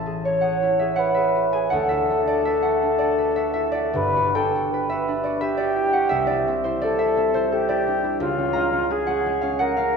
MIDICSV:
0, 0, Header, 1, 3, 480
1, 0, Start_track
1, 0, Tempo, 737101
1, 1108, Time_signature, 3, 2, 24, 8
1, 2065, Tempo, 775194
1, 3025, Tempo, 697674
1, 6635, End_track
2, 0, Start_track
2, 0, Title_t, "Flute"
2, 0, Program_c, 0, 73
2, 155, Note_on_c, 0, 73, 69
2, 643, Note_on_c, 0, 71, 72
2, 653, Note_off_c, 0, 73, 0
2, 1114, Note_off_c, 0, 71, 0
2, 1119, Note_on_c, 0, 69, 82
2, 2524, Note_off_c, 0, 69, 0
2, 2545, Note_on_c, 0, 71, 83
2, 2795, Note_on_c, 0, 69, 71
2, 2804, Note_off_c, 0, 71, 0
2, 3024, Note_on_c, 0, 71, 76
2, 3035, Note_off_c, 0, 69, 0
2, 3501, Note_on_c, 0, 67, 85
2, 3512, Note_off_c, 0, 71, 0
2, 4283, Note_off_c, 0, 67, 0
2, 4469, Note_on_c, 0, 69, 78
2, 4954, Note_on_c, 0, 67, 84
2, 4964, Note_off_c, 0, 69, 0
2, 5418, Note_off_c, 0, 67, 0
2, 5422, Note_on_c, 0, 65, 85
2, 5909, Note_on_c, 0, 68, 80
2, 5919, Note_off_c, 0, 65, 0
2, 6384, Note_on_c, 0, 70, 87
2, 6395, Note_off_c, 0, 68, 0
2, 6635, Note_off_c, 0, 70, 0
2, 6635, End_track
3, 0, Start_track
3, 0, Title_t, "Harp"
3, 0, Program_c, 1, 46
3, 0, Note_on_c, 1, 33, 62
3, 0, Note_on_c, 1, 64, 52
3, 0, Note_on_c, 1, 73, 31
3, 0, Note_on_c, 1, 76, 59
3, 0, Note_on_c, 1, 81, 91
3, 40, Note_on_c, 1, 68, 49
3, 155, Note_off_c, 1, 73, 0
3, 163, Note_on_c, 1, 73, 55
3, 267, Note_on_c, 1, 78, 79
3, 272, Note_off_c, 1, 68, 0
3, 280, Note_on_c, 1, 68, 49
3, 398, Note_off_c, 1, 64, 0
3, 406, Note_on_c, 1, 64, 48
3, 509, Note_off_c, 1, 76, 0
3, 515, Note_off_c, 1, 68, 0
3, 517, Note_on_c, 1, 76, 66
3, 523, Note_on_c, 1, 68, 51
3, 616, Note_off_c, 1, 78, 0
3, 624, Note_on_c, 1, 78, 88
3, 629, Note_off_c, 1, 73, 0
3, 637, Note_on_c, 1, 73, 50
3, 738, Note_off_c, 1, 76, 0
3, 746, Note_on_c, 1, 76, 80
3, 752, Note_off_c, 1, 68, 0
3, 760, Note_on_c, 1, 68, 51
3, 829, Note_off_c, 1, 78, 0
3, 880, Note_on_c, 1, 66, 43
3, 993, Note_off_c, 1, 68, 0
3, 995, Note_on_c, 1, 80, 87
3, 1001, Note_on_c, 1, 68, 50
3, 1078, Note_off_c, 1, 66, 0
3, 1107, Note_on_c, 1, 78, 98
3, 1119, Note_on_c, 1, 38, 66
3, 1130, Note_off_c, 1, 73, 0
3, 1131, Note_off_c, 1, 80, 0
3, 1133, Note_off_c, 1, 33, 0
3, 1134, Note_off_c, 1, 68, 0
3, 1222, Note_off_c, 1, 76, 0
3, 1229, Note_on_c, 1, 76, 85
3, 1240, Note_on_c, 1, 66, 53
3, 1368, Note_on_c, 1, 62, 49
3, 1478, Note_off_c, 1, 66, 0
3, 1481, Note_on_c, 1, 74, 86
3, 1486, Note_on_c, 1, 66, 52
3, 1589, Note_off_c, 1, 76, 0
3, 1597, Note_on_c, 1, 76, 95
3, 1608, Note_on_c, 1, 71, 58
3, 1701, Note_off_c, 1, 78, 0
3, 1709, Note_on_c, 1, 78, 82
3, 1714, Note_off_c, 1, 66, 0
3, 1721, Note_on_c, 1, 66, 52
3, 1834, Note_off_c, 1, 62, 0
3, 1842, Note_on_c, 1, 62, 51
3, 1936, Note_off_c, 1, 74, 0
3, 1944, Note_on_c, 1, 74, 82
3, 1950, Note_off_c, 1, 66, 0
3, 1958, Note_on_c, 1, 66, 52
3, 2065, Note_off_c, 1, 71, 0
3, 2073, Note_on_c, 1, 71, 53
3, 2174, Note_off_c, 1, 76, 0
3, 2180, Note_off_c, 1, 66, 0
3, 2181, Note_on_c, 1, 76, 89
3, 2187, Note_on_c, 1, 66, 49
3, 2283, Note_off_c, 1, 76, 0
3, 2291, Note_on_c, 1, 76, 81
3, 2296, Note_off_c, 1, 64, 0
3, 2303, Note_on_c, 1, 64, 45
3, 2396, Note_off_c, 1, 74, 0
3, 2403, Note_on_c, 1, 74, 91
3, 2410, Note_off_c, 1, 66, 0
3, 2418, Note_on_c, 1, 66, 53
3, 2422, Note_off_c, 1, 81, 0
3, 2508, Note_off_c, 1, 64, 0
3, 2537, Note_on_c, 1, 31, 63
3, 2547, Note_on_c, 1, 43, 67
3, 2561, Note_off_c, 1, 76, 0
3, 2569, Note_off_c, 1, 38, 0
3, 2670, Note_off_c, 1, 66, 0
3, 2678, Note_on_c, 1, 66, 54
3, 2795, Note_on_c, 1, 79, 96
3, 2797, Note_off_c, 1, 62, 0
3, 2805, Note_on_c, 1, 62, 55
3, 2914, Note_off_c, 1, 66, 0
3, 2922, Note_on_c, 1, 66, 52
3, 3027, Note_off_c, 1, 71, 0
3, 3035, Note_on_c, 1, 71, 61
3, 3144, Note_on_c, 1, 76, 89
3, 3149, Note_off_c, 1, 66, 0
3, 3158, Note_on_c, 1, 66, 52
3, 3265, Note_off_c, 1, 62, 0
3, 3273, Note_on_c, 1, 62, 55
3, 3372, Note_off_c, 1, 74, 0
3, 3380, Note_on_c, 1, 74, 75
3, 3381, Note_off_c, 1, 66, 0
3, 3389, Note_on_c, 1, 66, 54
3, 3489, Note_off_c, 1, 76, 0
3, 3497, Note_on_c, 1, 76, 97
3, 3503, Note_off_c, 1, 71, 0
3, 3511, Note_on_c, 1, 71, 57
3, 3603, Note_off_c, 1, 74, 0
3, 3611, Note_on_c, 1, 74, 89
3, 3618, Note_off_c, 1, 66, 0
3, 3627, Note_on_c, 1, 66, 56
3, 3702, Note_off_c, 1, 76, 0
3, 3740, Note_on_c, 1, 64, 47
3, 3848, Note_off_c, 1, 78, 0
3, 3856, Note_off_c, 1, 66, 0
3, 3856, Note_on_c, 1, 78, 90
3, 3865, Note_on_c, 1, 66, 56
3, 3944, Note_off_c, 1, 64, 0
3, 3968, Note_on_c, 1, 76, 106
3, 3979, Note_on_c, 1, 36, 73
3, 3998, Note_off_c, 1, 31, 0
3, 3998, Note_off_c, 1, 78, 0
3, 4003, Note_off_c, 1, 43, 0
3, 4003, Note_off_c, 1, 66, 0
3, 4004, Note_off_c, 1, 71, 0
3, 4081, Note_off_c, 1, 74, 0
3, 4090, Note_on_c, 1, 74, 94
3, 4106, Note_on_c, 1, 64, 58
3, 4232, Note_on_c, 1, 60, 57
3, 4345, Note_off_c, 1, 64, 0
3, 4345, Note_on_c, 1, 72, 91
3, 4353, Note_on_c, 1, 64, 62
3, 4458, Note_off_c, 1, 74, 0
3, 4466, Note_on_c, 1, 74, 107
3, 4478, Note_on_c, 1, 69, 68
3, 4576, Note_off_c, 1, 76, 0
3, 4584, Note_on_c, 1, 76, 93
3, 4590, Note_off_c, 1, 64, 0
3, 4598, Note_on_c, 1, 64, 53
3, 4703, Note_off_c, 1, 60, 0
3, 4711, Note_on_c, 1, 60, 64
3, 4819, Note_off_c, 1, 72, 0
3, 4828, Note_on_c, 1, 72, 90
3, 4830, Note_off_c, 1, 64, 0
3, 4838, Note_on_c, 1, 64, 54
3, 4943, Note_off_c, 1, 69, 0
3, 4951, Note_on_c, 1, 69, 64
3, 5056, Note_off_c, 1, 74, 0
3, 5062, Note_off_c, 1, 64, 0
3, 5065, Note_on_c, 1, 74, 85
3, 5070, Note_on_c, 1, 64, 57
3, 5183, Note_off_c, 1, 62, 0
3, 5191, Note_on_c, 1, 62, 51
3, 5299, Note_off_c, 1, 64, 0
3, 5307, Note_on_c, 1, 64, 59
3, 5391, Note_off_c, 1, 62, 0
3, 5419, Note_on_c, 1, 37, 76
3, 5438, Note_off_c, 1, 76, 0
3, 5441, Note_off_c, 1, 72, 0
3, 5442, Note_off_c, 1, 36, 0
3, 5442, Note_off_c, 1, 60, 0
3, 5442, Note_off_c, 1, 74, 0
3, 5443, Note_off_c, 1, 79, 0
3, 5444, Note_off_c, 1, 64, 0
3, 5444, Note_off_c, 1, 69, 0
3, 5545, Note_on_c, 1, 61, 60
3, 5646, Note_on_c, 1, 82, 104
3, 5660, Note_on_c, 1, 56, 58
3, 5773, Note_off_c, 1, 61, 0
3, 5781, Note_on_c, 1, 61, 61
3, 5903, Note_on_c, 1, 68, 71
3, 6015, Note_on_c, 1, 78, 96
3, 6018, Note_off_c, 1, 61, 0
3, 6026, Note_on_c, 1, 61, 59
3, 6141, Note_off_c, 1, 56, 0
3, 6149, Note_on_c, 1, 56, 59
3, 6253, Note_off_c, 1, 61, 0
3, 6254, Note_on_c, 1, 77, 73
3, 6262, Note_on_c, 1, 61, 63
3, 6366, Note_off_c, 1, 78, 0
3, 6375, Note_on_c, 1, 78, 98
3, 6378, Note_off_c, 1, 68, 0
3, 6386, Note_on_c, 1, 68, 64
3, 6488, Note_off_c, 1, 77, 0
3, 6497, Note_on_c, 1, 77, 86
3, 6500, Note_off_c, 1, 61, 0
3, 6509, Note_on_c, 1, 61, 64
3, 6585, Note_off_c, 1, 78, 0
3, 6635, Note_off_c, 1, 37, 0
3, 6635, Note_off_c, 1, 56, 0
3, 6635, Note_off_c, 1, 61, 0
3, 6635, Note_off_c, 1, 68, 0
3, 6635, Note_off_c, 1, 77, 0
3, 6635, Note_off_c, 1, 82, 0
3, 6635, End_track
0, 0, End_of_file